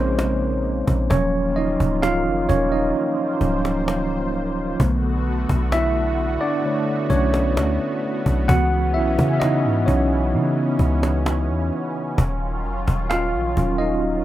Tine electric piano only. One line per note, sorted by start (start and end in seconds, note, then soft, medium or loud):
0.00 1.12 C#3 medium
0.00 1.12 G#3 soft
0.00 0.61 C4 medium
0.00 1.12 C#4 medium
0.00 1.13 D#4 medium
0.00 1.12 C5 medium
0.00 1.10 C#5 loud
0.00 1.12 D#5 loud
1.10 2.45 F3 medium
1.10 2.45 F#3 medium
1.10 1.54 C#4 medium
1.10 1.53 C#5 loud
1.56 1.78 D#4 medium
1.56 1.77 D#5 loud
2.02 2.25 F4 medium
2.02 2.23 F5 loud
2.49 2.71 C#4 medium
2.49 2.73 C#5 medium
2.72 4.30 D#4 medium
2.72 4.30 D#5 medium
3.41 3.84 F3 soft
3.41 3.84 F#3 soft
3.41 3.84 C#4 medium
4.80 6.64 D3 medium
4.80 6.64 A3 medium
4.80 8.46 B3 medium
5.72 6.38 E4 medium
5.72 6.43 E5 loud
6.41 7.07 D4 medium
6.41 7.12 D5 medium
6.65 7.07 D3 medium
6.65 7.07 A3 soft
6.65 7.07 C#5 medium
7.10 8.00 C#4 medium
7.10 7.99 C#5 medium
8.48 10.33 E3 medium
8.48 10.33 B3 medium
8.48 8.93 F#4 medium
8.48 8.96 F#5 loud
8.94 9.14 E4 medium
8.94 9.12 E5 loud
9.33 9.41 E5 medium
9.40 9.85 D#4 medium
9.40 9.88 D#5 loud
9.86 11.23 C#4 medium
9.86 11.21 C#5 medium
10.34 10.76 E3 medium
10.34 10.76 B3 medium
10.34 10.76 D#4 medium
13.10 13.57 F4 medium
13.10 13.81 F5 loud
13.57 14.24 F#3 medium
13.57 14.24 C#4 medium
13.57 14.24 F4 medium
13.78 14.24 D#4 medium
13.78 14.24 D#5 loud